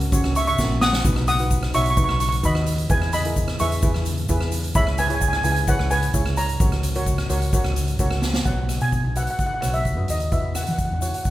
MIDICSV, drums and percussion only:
0, 0, Header, 1, 2, 480
1, 0, Start_track
1, 0, Key_signature, 5, "major"
1, 0, Tempo, 463679
1, 1086, Time_signature, 4, 2, 24, 8
1, 11701, End_track
2, 0, Start_track
2, 0, Title_t, "Drums"
2, 10, Note_on_c, 9, 42, 60
2, 14, Note_on_c, 9, 82, 31
2, 113, Note_off_c, 9, 42, 0
2, 117, Note_off_c, 9, 82, 0
2, 126, Note_on_c, 9, 42, 59
2, 127, Note_on_c, 9, 36, 109
2, 133, Note_on_c, 9, 82, 106
2, 229, Note_off_c, 9, 42, 0
2, 231, Note_off_c, 9, 36, 0
2, 237, Note_off_c, 9, 82, 0
2, 249, Note_on_c, 9, 37, 88
2, 353, Note_off_c, 9, 37, 0
2, 365, Note_on_c, 9, 42, 81
2, 370, Note_on_c, 9, 82, 91
2, 468, Note_off_c, 9, 42, 0
2, 474, Note_off_c, 9, 82, 0
2, 488, Note_on_c, 9, 42, 56
2, 491, Note_on_c, 9, 82, 30
2, 592, Note_off_c, 9, 42, 0
2, 594, Note_off_c, 9, 82, 0
2, 603, Note_on_c, 9, 82, 104
2, 607, Note_on_c, 9, 36, 84
2, 609, Note_on_c, 9, 38, 61
2, 707, Note_off_c, 9, 82, 0
2, 710, Note_off_c, 9, 36, 0
2, 713, Note_off_c, 9, 38, 0
2, 842, Note_on_c, 9, 38, 99
2, 848, Note_on_c, 9, 82, 76
2, 946, Note_off_c, 9, 38, 0
2, 952, Note_off_c, 9, 82, 0
2, 964, Note_on_c, 9, 38, 92
2, 970, Note_on_c, 9, 82, 31
2, 1068, Note_off_c, 9, 38, 0
2, 1074, Note_off_c, 9, 82, 0
2, 1082, Note_on_c, 9, 42, 60
2, 1083, Note_on_c, 9, 36, 114
2, 1087, Note_on_c, 9, 82, 103
2, 1185, Note_off_c, 9, 42, 0
2, 1187, Note_off_c, 9, 36, 0
2, 1191, Note_off_c, 9, 82, 0
2, 1203, Note_on_c, 9, 37, 89
2, 1306, Note_off_c, 9, 37, 0
2, 1320, Note_on_c, 9, 82, 84
2, 1324, Note_on_c, 9, 42, 88
2, 1423, Note_off_c, 9, 82, 0
2, 1427, Note_off_c, 9, 42, 0
2, 1440, Note_on_c, 9, 42, 63
2, 1543, Note_off_c, 9, 42, 0
2, 1560, Note_on_c, 9, 42, 66
2, 1561, Note_on_c, 9, 36, 86
2, 1562, Note_on_c, 9, 82, 101
2, 1663, Note_off_c, 9, 42, 0
2, 1665, Note_off_c, 9, 36, 0
2, 1665, Note_off_c, 9, 82, 0
2, 1684, Note_on_c, 9, 37, 83
2, 1687, Note_on_c, 9, 82, 30
2, 1787, Note_off_c, 9, 37, 0
2, 1790, Note_off_c, 9, 82, 0
2, 1799, Note_on_c, 9, 42, 81
2, 1802, Note_on_c, 9, 82, 78
2, 1903, Note_off_c, 9, 42, 0
2, 1906, Note_off_c, 9, 82, 0
2, 1923, Note_on_c, 9, 42, 67
2, 2026, Note_off_c, 9, 42, 0
2, 2037, Note_on_c, 9, 42, 65
2, 2041, Note_on_c, 9, 36, 113
2, 2041, Note_on_c, 9, 82, 99
2, 2140, Note_off_c, 9, 42, 0
2, 2144, Note_off_c, 9, 36, 0
2, 2145, Note_off_c, 9, 82, 0
2, 2162, Note_on_c, 9, 37, 85
2, 2265, Note_off_c, 9, 37, 0
2, 2278, Note_on_c, 9, 42, 87
2, 2282, Note_on_c, 9, 82, 82
2, 2381, Note_off_c, 9, 42, 0
2, 2386, Note_off_c, 9, 82, 0
2, 2404, Note_on_c, 9, 42, 66
2, 2507, Note_off_c, 9, 42, 0
2, 2521, Note_on_c, 9, 42, 66
2, 2522, Note_on_c, 9, 36, 83
2, 2523, Note_on_c, 9, 82, 91
2, 2625, Note_off_c, 9, 42, 0
2, 2626, Note_off_c, 9, 36, 0
2, 2627, Note_off_c, 9, 82, 0
2, 2640, Note_on_c, 9, 37, 82
2, 2744, Note_off_c, 9, 37, 0
2, 2758, Note_on_c, 9, 42, 92
2, 2761, Note_on_c, 9, 82, 66
2, 2862, Note_off_c, 9, 42, 0
2, 2865, Note_off_c, 9, 82, 0
2, 2880, Note_on_c, 9, 42, 68
2, 2984, Note_off_c, 9, 42, 0
2, 2998, Note_on_c, 9, 42, 67
2, 3001, Note_on_c, 9, 36, 109
2, 3001, Note_on_c, 9, 82, 95
2, 3101, Note_off_c, 9, 42, 0
2, 3104, Note_off_c, 9, 82, 0
2, 3105, Note_off_c, 9, 36, 0
2, 3122, Note_on_c, 9, 37, 83
2, 3225, Note_off_c, 9, 37, 0
2, 3237, Note_on_c, 9, 42, 93
2, 3237, Note_on_c, 9, 82, 80
2, 3341, Note_off_c, 9, 42, 0
2, 3341, Note_off_c, 9, 82, 0
2, 3364, Note_on_c, 9, 42, 62
2, 3467, Note_off_c, 9, 42, 0
2, 3481, Note_on_c, 9, 36, 86
2, 3481, Note_on_c, 9, 42, 63
2, 3482, Note_on_c, 9, 82, 92
2, 3584, Note_off_c, 9, 42, 0
2, 3585, Note_off_c, 9, 36, 0
2, 3586, Note_off_c, 9, 82, 0
2, 3598, Note_on_c, 9, 82, 29
2, 3600, Note_on_c, 9, 37, 89
2, 3702, Note_off_c, 9, 82, 0
2, 3704, Note_off_c, 9, 37, 0
2, 3720, Note_on_c, 9, 82, 80
2, 3722, Note_on_c, 9, 42, 86
2, 3824, Note_off_c, 9, 82, 0
2, 3825, Note_off_c, 9, 42, 0
2, 3849, Note_on_c, 9, 42, 69
2, 3953, Note_off_c, 9, 42, 0
2, 3958, Note_on_c, 9, 82, 101
2, 3962, Note_on_c, 9, 36, 110
2, 3962, Note_on_c, 9, 42, 60
2, 4062, Note_off_c, 9, 82, 0
2, 4066, Note_off_c, 9, 36, 0
2, 4066, Note_off_c, 9, 42, 0
2, 4083, Note_on_c, 9, 37, 81
2, 4186, Note_off_c, 9, 37, 0
2, 4197, Note_on_c, 9, 82, 82
2, 4203, Note_on_c, 9, 42, 79
2, 4300, Note_off_c, 9, 82, 0
2, 4306, Note_off_c, 9, 42, 0
2, 4324, Note_on_c, 9, 42, 61
2, 4428, Note_off_c, 9, 42, 0
2, 4438, Note_on_c, 9, 82, 99
2, 4441, Note_on_c, 9, 36, 82
2, 4443, Note_on_c, 9, 42, 58
2, 4542, Note_off_c, 9, 82, 0
2, 4544, Note_off_c, 9, 36, 0
2, 4547, Note_off_c, 9, 42, 0
2, 4561, Note_on_c, 9, 37, 81
2, 4664, Note_off_c, 9, 37, 0
2, 4676, Note_on_c, 9, 82, 82
2, 4677, Note_on_c, 9, 42, 84
2, 4780, Note_off_c, 9, 82, 0
2, 4781, Note_off_c, 9, 42, 0
2, 4803, Note_on_c, 9, 42, 59
2, 4907, Note_off_c, 9, 42, 0
2, 4914, Note_on_c, 9, 82, 100
2, 4919, Note_on_c, 9, 36, 113
2, 4919, Note_on_c, 9, 42, 61
2, 5018, Note_off_c, 9, 82, 0
2, 5022, Note_off_c, 9, 36, 0
2, 5022, Note_off_c, 9, 42, 0
2, 5040, Note_on_c, 9, 37, 85
2, 5143, Note_off_c, 9, 37, 0
2, 5155, Note_on_c, 9, 42, 88
2, 5155, Note_on_c, 9, 82, 85
2, 5259, Note_off_c, 9, 42, 0
2, 5259, Note_off_c, 9, 82, 0
2, 5279, Note_on_c, 9, 42, 64
2, 5383, Note_off_c, 9, 42, 0
2, 5397, Note_on_c, 9, 82, 106
2, 5398, Note_on_c, 9, 36, 91
2, 5399, Note_on_c, 9, 42, 58
2, 5501, Note_off_c, 9, 82, 0
2, 5502, Note_off_c, 9, 36, 0
2, 5503, Note_off_c, 9, 42, 0
2, 5518, Note_on_c, 9, 37, 88
2, 5521, Note_on_c, 9, 82, 31
2, 5621, Note_off_c, 9, 37, 0
2, 5624, Note_off_c, 9, 82, 0
2, 5633, Note_on_c, 9, 82, 84
2, 5637, Note_on_c, 9, 42, 83
2, 5737, Note_off_c, 9, 82, 0
2, 5740, Note_off_c, 9, 42, 0
2, 5758, Note_on_c, 9, 42, 64
2, 5862, Note_off_c, 9, 42, 0
2, 5875, Note_on_c, 9, 82, 108
2, 5876, Note_on_c, 9, 36, 104
2, 5877, Note_on_c, 9, 42, 58
2, 5979, Note_off_c, 9, 82, 0
2, 5980, Note_off_c, 9, 36, 0
2, 5980, Note_off_c, 9, 42, 0
2, 5997, Note_on_c, 9, 37, 80
2, 6100, Note_off_c, 9, 37, 0
2, 6115, Note_on_c, 9, 82, 87
2, 6117, Note_on_c, 9, 42, 86
2, 6219, Note_off_c, 9, 82, 0
2, 6220, Note_off_c, 9, 42, 0
2, 6238, Note_on_c, 9, 42, 67
2, 6342, Note_off_c, 9, 42, 0
2, 6354, Note_on_c, 9, 42, 65
2, 6355, Note_on_c, 9, 36, 89
2, 6356, Note_on_c, 9, 82, 106
2, 6457, Note_off_c, 9, 42, 0
2, 6458, Note_off_c, 9, 36, 0
2, 6460, Note_off_c, 9, 82, 0
2, 6476, Note_on_c, 9, 37, 81
2, 6580, Note_off_c, 9, 37, 0
2, 6593, Note_on_c, 9, 82, 78
2, 6598, Note_on_c, 9, 42, 93
2, 6696, Note_off_c, 9, 82, 0
2, 6701, Note_off_c, 9, 42, 0
2, 6719, Note_on_c, 9, 42, 67
2, 6823, Note_off_c, 9, 42, 0
2, 6834, Note_on_c, 9, 36, 118
2, 6835, Note_on_c, 9, 42, 64
2, 6836, Note_on_c, 9, 82, 107
2, 6938, Note_off_c, 9, 36, 0
2, 6939, Note_off_c, 9, 42, 0
2, 6940, Note_off_c, 9, 82, 0
2, 6958, Note_on_c, 9, 37, 84
2, 6958, Note_on_c, 9, 82, 31
2, 7061, Note_off_c, 9, 37, 0
2, 7061, Note_off_c, 9, 82, 0
2, 7072, Note_on_c, 9, 42, 96
2, 7079, Note_on_c, 9, 82, 86
2, 7175, Note_off_c, 9, 42, 0
2, 7182, Note_off_c, 9, 82, 0
2, 7197, Note_on_c, 9, 42, 67
2, 7301, Note_off_c, 9, 42, 0
2, 7311, Note_on_c, 9, 42, 66
2, 7313, Note_on_c, 9, 36, 86
2, 7317, Note_on_c, 9, 82, 98
2, 7415, Note_off_c, 9, 42, 0
2, 7417, Note_off_c, 9, 36, 0
2, 7420, Note_off_c, 9, 82, 0
2, 7435, Note_on_c, 9, 37, 87
2, 7442, Note_on_c, 9, 82, 30
2, 7539, Note_off_c, 9, 37, 0
2, 7545, Note_off_c, 9, 82, 0
2, 7555, Note_on_c, 9, 42, 84
2, 7557, Note_on_c, 9, 82, 78
2, 7658, Note_off_c, 9, 42, 0
2, 7661, Note_off_c, 9, 82, 0
2, 7677, Note_on_c, 9, 42, 70
2, 7679, Note_on_c, 9, 82, 28
2, 7781, Note_off_c, 9, 42, 0
2, 7783, Note_off_c, 9, 82, 0
2, 7794, Note_on_c, 9, 36, 106
2, 7797, Note_on_c, 9, 42, 65
2, 7797, Note_on_c, 9, 82, 102
2, 7898, Note_off_c, 9, 36, 0
2, 7900, Note_off_c, 9, 82, 0
2, 7901, Note_off_c, 9, 42, 0
2, 7913, Note_on_c, 9, 37, 83
2, 8017, Note_off_c, 9, 37, 0
2, 8035, Note_on_c, 9, 42, 87
2, 8043, Note_on_c, 9, 82, 79
2, 8139, Note_off_c, 9, 42, 0
2, 8146, Note_off_c, 9, 82, 0
2, 8156, Note_on_c, 9, 42, 62
2, 8161, Note_on_c, 9, 82, 28
2, 8260, Note_off_c, 9, 42, 0
2, 8265, Note_off_c, 9, 82, 0
2, 8271, Note_on_c, 9, 42, 63
2, 8273, Note_on_c, 9, 82, 88
2, 8274, Note_on_c, 9, 36, 83
2, 8374, Note_off_c, 9, 42, 0
2, 8377, Note_off_c, 9, 82, 0
2, 8378, Note_off_c, 9, 36, 0
2, 8391, Note_on_c, 9, 37, 83
2, 8495, Note_off_c, 9, 37, 0
2, 8509, Note_on_c, 9, 38, 71
2, 8520, Note_on_c, 9, 82, 74
2, 8612, Note_off_c, 9, 38, 0
2, 8623, Note_off_c, 9, 82, 0
2, 8630, Note_on_c, 9, 38, 93
2, 8643, Note_on_c, 9, 82, 28
2, 8734, Note_off_c, 9, 38, 0
2, 8747, Note_off_c, 9, 82, 0
2, 8751, Note_on_c, 9, 42, 52
2, 8754, Note_on_c, 9, 36, 97
2, 8758, Note_on_c, 9, 82, 58
2, 8854, Note_off_c, 9, 42, 0
2, 8858, Note_off_c, 9, 36, 0
2, 8861, Note_off_c, 9, 82, 0
2, 8995, Note_on_c, 9, 37, 75
2, 8995, Note_on_c, 9, 42, 72
2, 9002, Note_on_c, 9, 82, 80
2, 9099, Note_off_c, 9, 37, 0
2, 9099, Note_off_c, 9, 42, 0
2, 9105, Note_off_c, 9, 82, 0
2, 9117, Note_on_c, 9, 42, 55
2, 9221, Note_off_c, 9, 42, 0
2, 9239, Note_on_c, 9, 36, 72
2, 9240, Note_on_c, 9, 42, 53
2, 9240, Note_on_c, 9, 82, 66
2, 9342, Note_off_c, 9, 36, 0
2, 9343, Note_off_c, 9, 42, 0
2, 9344, Note_off_c, 9, 82, 0
2, 9478, Note_on_c, 9, 42, 67
2, 9486, Note_on_c, 9, 82, 83
2, 9581, Note_off_c, 9, 42, 0
2, 9590, Note_off_c, 9, 82, 0
2, 9596, Note_on_c, 9, 42, 55
2, 9699, Note_off_c, 9, 42, 0
2, 9716, Note_on_c, 9, 42, 53
2, 9720, Note_on_c, 9, 36, 90
2, 9729, Note_on_c, 9, 82, 69
2, 9819, Note_off_c, 9, 42, 0
2, 9824, Note_off_c, 9, 36, 0
2, 9832, Note_off_c, 9, 82, 0
2, 9960, Note_on_c, 9, 37, 72
2, 9960, Note_on_c, 9, 42, 69
2, 9971, Note_on_c, 9, 82, 91
2, 10063, Note_off_c, 9, 37, 0
2, 10063, Note_off_c, 9, 42, 0
2, 10074, Note_off_c, 9, 82, 0
2, 10079, Note_on_c, 9, 42, 52
2, 10182, Note_off_c, 9, 42, 0
2, 10197, Note_on_c, 9, 42, 58
2, 10201, Note_on_c, 9, 36, 72
2, 10210, Note_on_c, 9, 82, 70
2, 10300, Note_off_c, 9, 42, 0
2, 10305, Note_off_c, 9, 36, 0
2, 10314, Note_off_c, 9, 82, 0
2, 10436, Note_on_c, 9, 42, 78
2, 10454, Note_on_c, 9, 82, 91
2, 10539, Note_off_c, 9, 42, 0
2, 10557, Note_off_c, 9, 82, 0
2, 10559, Note_on_c, 9, 42, 59
2, 10574, Note_on_c, 9, 82, 28
2, 10662, Note_off_c, 9, 42, 0
2, 10677, Note_off_c, 9, 82, 0
2, 10680, Note_on_c, 9, 42, 57
2, 10683, Note_on_c, 9, 36, 96
2, 10688, Note_on_c, 9, 82, 69
2, 10784, Note_off_c, 9, 42, 0
2, 10787, Note_off_c, 9, 36, 0
2, 10791, Note_off_c, 9, 82, 0
2, 10922, Note_on_c, 9, 37, 77
2, 10922, Note_on_c, 9, 42, 78
2, 10924, Note_on_c, 9, 82, 99
2, 11025, Note_off_c, 9, 37, 0
2, 11025, Note_off_c, 9, 42, 0
2, 11028, Note_off_c, 9, 82, 0
2, 11041, Note_on_c, 9, 42, 61
2, 11048, Note_on_c, 9, 82, 28
2, 11145, Note_off_c, 9, 42, 0
2, 11151, Note_off_c, 9, 82, 0
2, 11163, Note_on_c, 9, 82, 78
2, 11164, Note_on_c, 9, 42, 58
2, 11166, Note_on_c, 9, 36, 73
2, 11266, Note_off_c, 9, 82, 0
2, 11268, Note_off_c, 9, 42, 0
2, 11269, Note_off_c, 9, 36, 0
2, 11405, Note_on_c, 9, 82, 99
2, 11408, Note_on_c, 9, 42, 73
2, 11509, Note_off_c, 9, 82, 0
2, 11511, Note_off_c, 9, 42, 0
2, 11533, Note_on_c, 9, 42, 60
2, 11637, Note_off_c, 9, 42, 0
2, 11645, Note_on_c, 9, 82, 75
2, 11649, Note_on_c, 9, 36, 92
2, 11655, Note_on_c, 9, 42, 57
2, 11701, Note_off_c, 9, 36, 0
2, 11701, Note_off_c, 9, 42, 0
2, 11701, Note_off_c, 9, 82, 0
2, 11701, End_track
0, 0, End_of_file